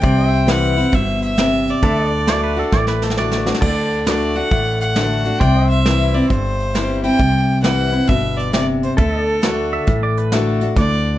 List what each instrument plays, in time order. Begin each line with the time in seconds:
Already playing: fiddle G5
0.02 upright bass C2, steel-string acoustic guitar C3, pedal steel guitar C5 D5, kick, closed hi-hat
0.29 pedal steel guitar E5
0.47 steel-string acoustic guitar E3 G3 C4 E4, fiddle F#5, snare, closed hi-hat
0.76 steel-string acoustic guitar C4 E4
0.92 upright bass G1, steel-string acoustic guitar B2, fiddle E5, kick, closed hi-hat
1.22 fiddle E5, closed hi-hat
1.38 steel-string acoustic guitar C3, snare, closed hi-hat
1.67 fiddle D5, closed hi-hat
1.82 upright bass D2, steel-string acoustic guitar D3, pedal steel guitar A4 E5, kick, closed hi-hat
2.10 pedal steel guitar D5
2.27 steel-string acoustic guitar D3 A3 D4 F#4, clean electric guitar D5, snare, closed hi-hat
2.44 clean electric guitar B4
2.57 steel-string acoustic guitar D4 F#4, clean electric guitar A4
2.72 upright bass A1, steel-string acoustic guitar A2, clean electric guitar D5, kick, snare
2.87 clean electric guitar B4, snare
3.02 clean electric guitar A4, snare
3.10 snare
3.17 steel-string acoustic guitar D3 A3 D4 F#4, clean electric guitar D5, snare
3.31 snare
3.46 steel-string acoustic guitar D4 F#4, snare
3.54 snare
3.61 upright bass D2, steel-string acoustic guitar D3, pedal steel guitar A4 D5, fiddle D5, kick, crash
4.06 steel-string acoustic guitar D3 A3 D4 F#4, fiddle D5, snare, closed hi-hat
4.36 steel-string acoustic guitar D4 F#4, fiddle F#5
4.51 upright bass A1, steel-string acoustic guitar A2, kick, closed hi-hat
4.80 fiddle F#5, closed hi-hat
4.95 steel-string acoustic guitar D3 A3 D4 F#4, snare, closed hi-hat
5.25 steel-string acoustic guitar D4 F#4, closed hi-hat
5.39 upright bass C2, steel-string acoustic guitar C3, pedal steel guitar C5 D5, fiddle G5, kick, closed hi-hat
5.66 pedal steel guitar E5, fiddle E5
5.85 steel-string acoustic guitar E3 G3 C4 E4, snare, closed hi-hat
6.14 steel-string acoustic guitar C4 E4, fiddle D5
6.29 upright bass G1, steel-string acoustic guitar G2, fiddle C5, kick, closed hi-hat
6.60 closed hi-hat
6.74 steel-string acoustic guitar E3 G3 C4 E4, snare, closed hi-hat
7.04 steel-string acoustic guitar C4 E4, fiddle G5, closed hi-hat
7.19 upright bass C2, steel-string acoustic guitar C3, kick, closed hi-hat
7.63 steel-string acoustic guitar E3 G3 C4 E4, fiddle F#5, snare, closed hi-hat
7.92 steel-string acoustic guitar C4 E4
8.07 upright bass G1, steel-string acoustic guitar B2, fiddle E5, kick, closed hi-hat
8.37 fiddle D5, closed hi-hat
8.53 steel-string acoustic guitar C3, fiddle D5, snare, closed hi-hat
8.83 fiddle C5, closed hi-hat
8.97 upright bass D2, steel-string acoustic guitar D3, pedal steel guitar A4 E5, fiddle A4, kick, closed hi-hat
9.24 pedal steel guitar D5
9.42 steel-string acoustic guitar D3 A3 D4 F#4, snare, closed hi-hat
9.73 clean electric guitar E5
9.87 upright bass A1, steel-string acoustic guitar A2, kick, closed hi-hat
10.03 clean electric guitar D5
10.17 clean electric guitar B4, closed hi-hat
10.32 steel-string acoustic guitar D3 A3 D4 F#4, clean electric guitar A4, snare, closed hi-hat
10.61 steel-string acoustic guitar D4 F#4, closed hi-hat
10.76 upright bass D2, steel-string acoustic guitar D3, fiddle D5, kick, closed hi-hat